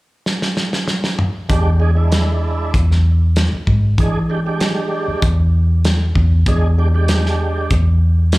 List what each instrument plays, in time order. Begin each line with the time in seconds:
0.26 snare
0.42 snare
0.57 snare
0.73 snare
0.88 snare
1.04 snare
1.19 mid tom
1.49 fingered electric bass E2, tonewheel organ G#3 D4 G4, kick, closed hi-hat
1.80 tonewheel organ G#3 D4 G#4
1.95 tonewheel organ G#3 D4 E4
2.12 snare, closed hi-hat
2.74 fingered electric bass E2, kick, closed hi-hat
2.91 snare
3.36 snare, closed hi-hat
3.53 muted fingered electric bass stroke
3.67 fingered electric bass G#2, kick
3.98 fingered electric bass E3, tonewheel organ G#3 D4 G#4, kick, closed hi-hat
4.30 tonewheel organ G#3 D4 G4
4.46 tonewheel organ G#3 D4 G4
4.60 snare, closed hi-hat
5.08 muted fingered electric bass stroke
5.22 fingered electric bass E2, kick, closed hi-hat
5.85 snare, closed hi-hat
6.15 fingered electric bass E2, kick
6.46 fingered electric bass E2, tonewheel organ G#3 D4 G#4, kick, closed hi-hat
6.78 tonewheel organ G#3 D4 G4
6.94 tonewheel organ G#3 D4 G4
7.08 snare, closed hi-hat
7.26 snare
7.70 fingered electric bass E2, kick, closed hi-hat
8.32 snare, closed hi-hat